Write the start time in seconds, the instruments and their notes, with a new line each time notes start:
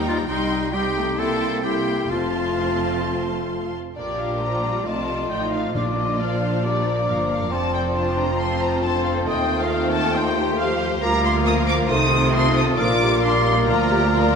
Already playing: double bass section D#2, cello section D#2, french horn section G3 D#4, viola section G3 D#4, violin section G5 A#5
0.07 clarinet F4, violin section F5
0.28 double bass section C2, cello section C2, french horn section G3 D#4, viola section G3 D#4, clarinet D#4, violin section D#5 G5 C6
0.72 french horn section G3 D#4, viola section G3 D#4, clarinet G4, violin section G5 C6
0.95 french horn section A3, viola section A3
1.17 french horn section A#3 E4, viola section A#3 E4, clarinet A4, violin section G5 A5 C6
1.63 french horn section A#3 E4, viola section A#3 E4, clarinet G4, violin section G5 C6
2.10 double bass section F1, cello section F2, french horn section A3 F4, viola section C4 F4, clarinet F4, violin section F5 A5 C6
3.96 double bass section A#1, cello section A#2, french horn section F3 D4, viola section A#3 F4, bassoon D4, clarinet F4, violin section G4 A#4 D5, flute D6
4.20 violin section F5
4.42 viola section F3, violin section D5 A#5
4.64 viola section G3
4.86 double bass section C2, cello section C3, viola section A3, bassoon D#4, french horn section D#4, violin section F4 A5, flute C6
5.31 double bass section A1, cello section A2, viola section D#4, violin section G5
5.53 violin section F5
5.75 double bass section A#1, timpani A#2, cello section A#2, viola section A#3 D4, bassoon D4, french horn section D4, violin section F4 D5 F5, flute D6
5.97 violin section D#5
6.19 viola section F3 D4, violin section D5 F5, flute F6
6.41 violin section C5
6.63 viola section G3 A#3, violin section A#4 D5, flute D6
6.85 viola section F3
7.07 double bass section G1, cello section G2, viola section A#3, violin section A#4 F5
7.30 violin section F5
7.51 double bass section F1, cello section F2, viola section F3 C4, french horn section F3 F4, bassoon C4, clarinet F4, violin section A4 D5 A5, flute C6
7.73 violin section G5
7.95 viola section D4, violin section F4 C5 A5
8.17 violin section A#5
8.38 viola section C4, violin section F4 C5 C6, flute A5
8.60 violin section A#5
8.82 viola section D3, violin section A4 A5, flute C6
9.04 violin section F5
9.25 double bass section D#2, cello section D#2, viola section D#3, french horn section A3, bassoon A3, violin section C5 D#5 G5, flute D#6
9.60 violin section F5
9.70 viola section C4, violin section C5 G5, flute F6
9.93 violin section A4 A5
10.14 viola section D#4, violin section C5 G5, flute C6
10.37 viola section G4
10.59 viola section F3, violin section C5 F5
11.01 double bass section D2, cello section D2, viola section G3 F4, french horn section A#3 F4, bassoon A#3, clarinet F4, violin section A#4 F5 A#5, flute D6
11.25 violin section C6
11.45 viola section F3, violin section A#4 D#6, flute A#5
11.69 violin section D6
11.89 double bass section C2, cello section C3, viola section D#3 D#4, french horn section A3, bassoon A3, violin section C5 D#6, flute C6
12.12 viola section C4
12.34 violin section A4 C6, flute D#6
12.57 violin section D#6
12.78 double bass section A#1, cello section A#2, viola section F3 D4, french horn section A#3, bassoon A#3, violin section A#4 D5 D6, flute F6
13.00 viola section G3
13.23 viola section G3 D4, violin section C6, flute D6
13.45 viola section D#4
13.67 cello section D2, double bass section D2, viola section F3 F4, violin section A#4 D5 A#5, flute F6
13.90 viola section G4
14.12 viola section F3 F4, violin section D5